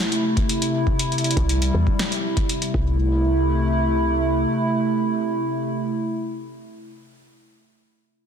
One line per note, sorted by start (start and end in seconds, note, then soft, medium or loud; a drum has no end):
0.00 2.71 C3 medium
0.00 0.97 A3 medium
0.00 2.71 E4 medium
0.12 closed hi-hat medium
0.37 kick loud
0.37 closed hi-hat soft
0.49 closed hi-hat medium
0.62 closed hi-hat medium
0.87 kick loud
0.99 2.73 G3 medium
0.99 closed hi-hat medium
1.12 closed hi-hat soft
1.18 closed hi-hat soft
1.24 closed hi-hat soft
1.31 closed hi-hat soft
1.37 1.71 C2 medium
1.37 kick loud
1.37 closed hi-hat soft
1.49 closed hi-hat medium
1.62 closed hi-hat medium
1.74 1.85 E2 medium
1.87 kick loud
1.99 snare loud
1.99 closed hi-hat medium
2.12 closed hi-hat medium
2.37 kick loud
2.37 closed hi-hat soft
2.49 closed hi-hat medium
2.62 closed hi-hat medium
2.74 4.45 C2 loud
2.74 5.91 C3 medium
2.74 5.91 A3 medium
2.74 5.91 E4 medium
2.74 kick loud